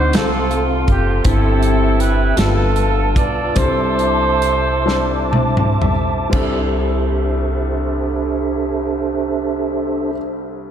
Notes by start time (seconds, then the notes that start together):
Already playing: D2 D3 A3 C4 D#4 F#4 C5 D5 F#5 D6
0.13 C2 C3 C4 F4 A4 F5, snare, closed hi-hat
0.17 A4 C6
0.51 closed hi-hat
0.88 F#1 G4, kick, closed hi-hat
1.24 G1 G2 C4 E4 G4 A4 E5 G5 E6, kick, closed hi-hat
1.63 closed hi-hat
2.00 B4, closed hi-hat
2.36 G1 G2 G3 B3 D4 F4 A4 B4 E5 A5, snare, closed hi-hat
2.76 closed hi-hat
3.16 B1 D5, kick, closed hi-hat
3.55 C2 C3 G3 C4 D4 E4 G4 A4 C5 E5 D6, kick, closed hi-hat
3.63 A4
3.99 closed hi-hat
4.42 closed hi-hat
4.85 G3 C4 D4 E4 A4, snare
5.31 A5, high tom
5.57 mid tom
5.81 B1 E5, mid tom
6.29 C2 G3 C4 D4 E4 G4 A4 C5 E5, kick, crash
6.33 C2 A4